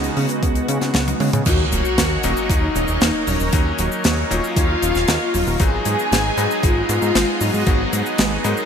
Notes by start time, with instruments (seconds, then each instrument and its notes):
Already playing: analog synth bass C#2, analog synth pad C#3 G#3 B3 D#4 F#4
0.04 closed hi-hat
0.17 analog synth bass C#3, analog synth lead B3, synth arpeggio sound C#4, open hi-hat
0.29 closed hi-hat
0.43 analog synth bass C#2, synth arpeggio sound F#4, kick, closed hi-hat
0.55 closed hi-hat
0.68 analog synth bass C#3, synth arpeggio sound C#4, closed hi-hat
0.81 analog synth bass C#3, snare, closed hi-hat
0.94 analog synth bass C#2, synth arpeggio sound B3, snare, closed hi-hat, high tom
1.08 closed hi-hat, high tom
1.20 analog synth bass C#3, synth arpeggio sound G#3, open hi-hat, mid tom
1.33 analog synth bass C#3, closed hi-hat, mid tom
1.45 analog synth bass D#2, synth arpeggio sound D#3, electric grand piano F#3 A#3 C#4 D#4, analog synth pad D#4 A#4 C#5, string machine F#4, analog synth lead F#4, kick, closed hi-hat, crash, sub drop, cabasa
1.72 analog synth bass D#1, synth arpeggio sound F#3, closed hi-hat, cabasa
1.85 cabasa
1.98 analog synth bass D#2, synth arpeggio sound A#3, snare, closed hi-hat, cabasa
2.23 analog synth bass D#1, electric grand piano F#3 A#3 C#4 D#4, synth arpeggio sound C#4, closed hi-hat, cabasa
2.37 cabasa
2.50 analog synth bass D#2, string machine D#4, analog synth lead D#4, synth arpeggio sound D#4, kick, closed hi-hat, cabasa
2.76 analog synth bass D#1, synth arpeggio sound C#4, closed hi-hat, cabasa
2.88 analog synth bass D#1, cabasa
3.01 analog synth bass D#2, synth arpeggio sound A#3, snare, closed hi-hat, cabasa
3.27 analog synth bass D#1, synth arpeggio sound F#3, string machine C#4, analog synth lead C#4, open hi-hat, cabasa
3.40 analog synth bass D#1, cabasa
3.53 analog synth bass D#2, synth arpeggio sound D#3, electric grand piano F#3 A#3 C#4 D#4, kick, closed hi-hat, cabasa
3.78 analog synth bass D#1, synth arpeggio sound F#3, closed hi-hat, cabasa
3.92 cabasa
4.04 analog synth bass D#2, synth arpeggio sound A#3, snare, closed hi-hat, cabasa
4.31 analog synth bass D#1, electric grand piano F#3 A#3 C#4 D#4, synth arpeggio sound C#4, string machine F4, analog synth lead F4, closed hi-hat, cabasa
4.44 cabasa
4.56 analog synth bass D#2, synth arpeggio sound D#4, kick, closed hi-hat, cabasa
4.82 analog synth bass D#1, synth arpeggio sound C#4, closed hi-hat, cabasa
4.95 analog synth bass D#1, snare, cabasa
5.08 analog synth bass D#2, synth arpeggio sound A#3, snare, closed hi-hat, cabasa
5.34 analog synth bass D#1, synth arpeggio sound F#3, open hi-hat, cabasa
5.47 analog synth bass D#1, cabasa
5.60 analog synth bass G#1, synth arpeggio sound D#3, electric grand piano F#3 G#3 B3 D#4, analog synth pad B3 G#4, analog synth lead G#4, string machine G#4, kick, closed hi-hat, cabasa
5.85 analog synth bass G#2, synth arpeggio sound F#3, closed hi-hat, cabasa
5.99 cabasa
6.12 analog synth bass G#1, synth arpeggio sound G#3, snare, closed hi-hat, cabasa
6.37 analog synth bass G#2, electric grand piano F#3 G#3 B3 D#4, synth arpeggio sound B3, closed hi-hat, cabasa
6.51 cabasa
6.63 analog synth bass G#1, synth arpeggio sound D#4, string machine F4, analog synth lead F4, kick, closed hi-hat, cabasa
6.89 analog synth bass G#2, synth arpeggio sound B3, closed hi-hat, cabasa
7.02 analog synth bass G#2, cabasa
7.15 analog synth bass G#1, synth arpeggio sound G#3, snare, closed hi-hat, cabasa
7.41 analog synth bass G#2, synth arpeggio sound F#3, string machine F#4, analog synth lead F#4, open hi-hat, cabasa
7.54 analog synth bass G#2, cabasa
7.67 analog synth bass G#1, synth arpeggio sound D#3, electric grand piano F#3 G#3 B3 D#4, kick, closed hi-hat, cabasa
7.93 analog synth bass G#2, synth arpeggio sound F#3, closed hi-hat, cabasa
8.06 cabasa
8.18 analog synth bass G#1, synth arpeggio sound G#3, snare, closed hi-hat, cabasa
8.44 analog synth bass G#2, electric grand piano F#3 G#3 B3 D#4, synth arpeggio sound B3, analog synth lead A#4, string machine A#4, closed hi-hat, cabasa
8.57 cabasa